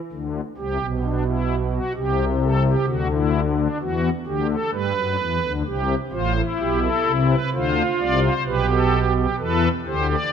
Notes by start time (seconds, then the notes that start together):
0.12 D2 D3
0.57 C2 C3 G4
0.80 B1 B2
1.04 D4
1.27 E4
1.73 F#4
1.96 C2 C3 G4
2.43 A4
2.66 G4
2.87 D2 D3 F#4
3.11 E4
3.58 D4
3.81 E2 E3 F#4
4.26 D2 D3 G4
4.50 A4
4.72 G2 G3 B4
4.96 F#2 F#3
5.20 E2 E3
5.43 D2 D3
5.66 C2 C3 G4
6.12 A1 A2 F4 C5
6.36 E4
6.59 B1 B2 G4
6.83 A4
7.06 C2 C3
7.30 B4
7.53 D2 D3 F4 C5
8.00 C2 C3 D5
8.23 C5
8.46 B1 B2 G4 B4
8.69 A4
9.15 G4
9.39 E2 E3 A4 B4
9.86 D2 D3 G4 C5
10.10 D5